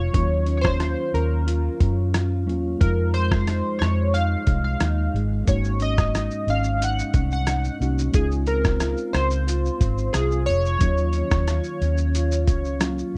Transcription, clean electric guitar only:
0.00 0.79 F4 medium
0.13 2.83 D#3 medium
0.47 1.12 C#4 medium
0.80 1.46 F4 medium
1.13 1.78 C#4 medium
1.47 2.14 F4 medium
1.80 2.46 C#4 medium
2.14 3.48 F4 medium
2.47 2.87 C#4 medium
2.80 5.47 F2 medium
3.15 3.82 G#3 medium
3.48 4.14 D#4 medium
3.82 4.47 G#3 medium
4.14 4.80 D#4 medium
4.47 5.15 G#3 soft
4.81 5.84 D#4 medium
5.15 5.80 G#3 medium
5.47 8.14 G#2 medium
5.81 6.48 C#4 medium
6.14 6.79 D#4 medium
6.49 7.14 C#4 medium
6.80 7.47 D#4 medium
7.14 7.81 C#4 medium
7.48 8.21 D#4 medium
7.82 8.47 C#4 medium
8.48 9.13 C4 medium
8.81 9.47 F4 medium
9.14 9.80 C4 medium
9.47 10.14 F4 medium
9.81 10.48 C4 medium
10.14 11.48 F4 medium
10.81 13.18 D#3 medium
11.16 11.82 C#4 medium
11.49 12.15 F4 medium
11.82 12.49 C#4 medium
12.15 12.82 F4 medium
12.49 13.15 C#4 soft
12.82 13.18 F4 medium

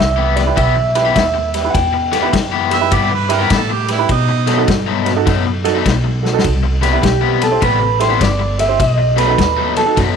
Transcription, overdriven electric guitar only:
0.16 0.40 E3 medium
0.16 0.39 B3 medium
0.16 0.39 E4 medium
0.16 0.39 G4 medium
0.56 0.76 E3 medium
0.56 0.74 B3 medium
0.56 0.74 E4 medium
0.56 0.74 G4 medium
0.75 muted overdriven electric guitar stroke soft
1.05 1.22 E3 medium
1.05 1.22 B3 medium
1.05 1.22 E4 medium
1.05 1.21 G4 medium
1.34 muted overdriven electric guitar stroke medium
1.93 muted overdriven electric guitar stroke soft
2.12 2.26 E3 medium
2.12 2.26 B3 loud
2.12 2.26 E4 medium
2.12 2.26 G4 medium
2.33 muted overdriven electric guitar stroke soft
2.52 2.75 E3 medium
2.52 2.74 B3 medium
2.52 2.74 E4 medium
2.52 2.74 G4 medium
2.91 3.11 E3 medium
2.91 3.10 B3 medium
2.91 3.10 E4 medium
2.91 3.09 G4 medium
3.11 muted overdriven electric guitar stroke medium
3.39 3.56 E3 medium
3.39 3.56 B3 medium
3.39 3.56 E4 medium
3.39 3.56 G4 medium
3.70 muted overdriven electric guitar stroke soft
4.28 muted overdriven electric guitar stroke soft
4.47 4.61 B2 medium
4.47 4.61 F#3 medium
4.47 4.61 A3 medium
4.47 4.61 D#4 medium
4.68 muted overdriven electric guitar stroke soft
4.87 5.10 B2 medium
4.87 5.09 F#3 medium
4.87 5.09 A3 medium
4.87 5.09 D#4 medium
5.26 5.45 B2 medium
5.26 5.45 F#3 medium
5.26 5.45 A3 medium
5.26 5.44 D#4 medium
5.45 muted overdriven electric guitar stroke medium
5.75 5.92 B2 medium
5.75 5.92 F#3 medium
5.75 5.91 A3 medium
5.75 5.91 D#4 medium
6.04 muted overdriven electric guitar stroke medium
6.63 muted overdriven electric guitar stroke soft
6.82 6.95 C3 medium
6.82 6.96 G3 medium
6.82 6.96 B3 medium
6.82 6.96 E4 loud
7.02 muted overdriven electric guitar stroke medium
7.21 7.44 C3 medium
7.21 7.44 G3 medium
7.21 7.44 B3 medium
7.21 7.44 E4 medium
7.61 7.80 C3 medium
7.61 7.80 G3 medium
7.61 7.79 B3 medium
7.61 7.79 E4 loud
7.80 muted overdriven electric guitar stroke medium
8.09 8.26 C3 medium
8.09 8.26 G3 medium
8.09 8.26 B3 medium
8.09 8.26 E4 medium
8.39 muted overdriven electric guitar stroke medium
8.98 muted overdriven electric guitar stroke soft
9.16 9.30 B2 medium
9.16 9.31 F#3 medium
9.16 9.31 A3 medium
9.16 9.31 D#4 loud
9.38 muted overdriven electric guitar stroke soft
9.57 9.80 B2 medium
9.57 9.80 F#3 medium
9.57 9.79 A3 medium
9.57 9.79 D#4 medium
9.97 10.16 B2 medium
9.97 10.16 F#3 medium
9.97 10.16 A3 medium
9.97 10.15 D#4 medium

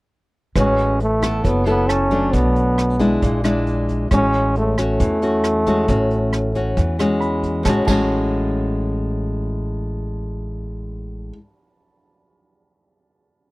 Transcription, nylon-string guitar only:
0.56 1.42 A2 soft
0.56 1.00 G#3 soft
0.56 1.00 C#4 soft
0.56 1.00 F#4 soft
1.22 1.63 B3 soft
1.22 1.63 E4 medium
1.22 1.63 A4 medium
1.44 2.10 F#3 soft
1.66 2.07 B3 medium
1.66 2.07 E4 medium
1.66 2.08 A4 medium
2.11 2.96 F#3 soft
2.11 2.97 A3 soft
2.11 2.97 D4 medium
2.33 3.20 B2 soft
2.99 3.41 G#3 medium
2.99 3.41 D4 medium
2.99 3.41 E4 medium
3.23 4.09 A#2 medium
3.44 4.07 G#3 medium
3.44 4.07 D4 medium
3.44 4.08 E4 medium
4.11 4.98 A2 soft
4.11 4.74 G#3 soft
4.11 4.74 C#4 soft
4.11 4.75 F#4 medium
4.78 5.19 C#4 medium
4.78 5.19 F#4 medium
5.00 5.86 E3 soft
5.22 5.63 C#4 medium
5.22 5.63 F#4 medium
5.67 5.85 G#3 soft
5.67 5.85 C#4 medium
5.67 5.86 F#4 medium
5.89 6.75 A2 soft
5.89 6.52 C#4 soft
5.89 6.52 F#4 soft
6.55 6.96 C#4 soft
6.55 6.96 F#4 medium
6.77 7.63 E3 soft
6.99 7.62 G#3 medium
6.99 7.62 C#4 medium
6.99 7.62 F#4 medium
7.63 7.84 A2 soft
7.63 7.87 G#3 soft
7.68 7.88 C#4 soft
7.68 7.90 F#4 medium
7.85 11.35 A2 medium
7.85 11.37 G#3 medium
7.85 11.39 C#4 medium
7.91 11.41 F#4 medium

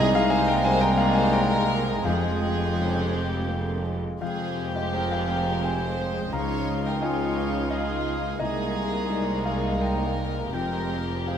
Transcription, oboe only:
0.00 2.07 A#5 medium
2.06 3.89 G5 medium
4.22 5.60 G5 medium
5.64 6.32 G5 soft
6.33 7.00 F5 soft
7.01 7.69 F5 medium
7.70 8.41 F5 medium
8.40 10.55 A#5 medium
10.54 11.02 G5 soft
11.28 11.38 G5 soft

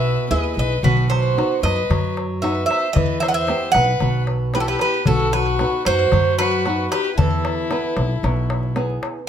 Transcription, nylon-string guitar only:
0.00 0.29 B2 medium
0.30 0.73 B3 soft
0.30 0.73 E4 soft
0.30 0.73 G#4 medium
0.84 1.35 B2 medium
1.37 1.80 B3 soft
1.37 1.80 D#4 soft
1.37 1.80 F#4 medium
1.90 2.41 F#3 medium
2.42 2.85 B3 soft
2.42 2.85 D#4 soft
2.42 2.85 F#4 medium
2.96 3.47 E3 medium
3.49 3.91 B3 soft
3.49 3.91 E4 soft
3.49 3.91 G4 medium
4.02 4.53 B2 medium
4.55 4.97 B3 medium
4.55 4.97 E4 soft
4.55 4.97 G4 medium
5.08 5.59 B2 medium
5.60 6.02 B3 medium
5.60 6.02 D#4 soft
5.60 6.03 F#4 medium
6.13 6.64 F#3 medium
6.66 7.08 B3 soft
6.66 7.08 D#4 soft
6.66 7.08 F#4 medium
7.19 7.70 E3 medium
7.71 8.13 B3 soft
7.71 8.13 E4 soft
7.71 8.13 B4 medium
8.24 8.74 B2 medium
8.76 9.18 B3 soft
8.76 9.18 E4 soft
8.76 9.18 G#4 soft

